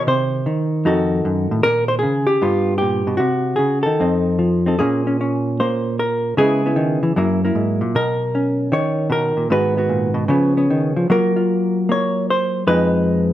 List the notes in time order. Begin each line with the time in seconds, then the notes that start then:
Already playing: D#3
0.07 C3 C5
0.46 D#3
0.85 F2 D#4 F#4 A4
1.25 F#2
1.51 A2
1.63 A#2 A#4
1.88 C5
1.99 C#3 G#4
2.27 G4
2.42 G2 B3 F4
2.78 A#2 G4
3.07 B2
3.17 C3 F#4
3.56 C#3 G#4
3.83 D#3 A4
4.00 F2 C4 D#4
4.39 F3
4.66 C4 D#4 A4
4.79 A#2 A#3 C#4 G#4
5.07 C#4
5.21 C#4
5.60 A#3 C5
5.99 A#4
6.37 C#3 G#3 B3 E4 G#4
6.66 B3 E4
6.76 D#3
7.03 E3
7.16 F#2 F#3 A#3 E4
7.45 A#3 E4
7.55 G#2
7.81 A#2
7.95 B2 A#4
8.35 C#4
8.72 D#3 C#5
9.10 B2 A#4
9.37 A#2
9.50 G#2 D#3 B3 F#4 B4
9.77 B3 F#4
9.89 A#2
10.14 B2
10.28 C#3 F3 B3 C#4
10.57 B3 C#4
10.70 D#3
10.96 F3
11.10 F#3 A#3 F4 A#4
11.36 F4
11.89 A#3 C#5
12.30 C5
12.67 F2 F3 G#3 D#4 B4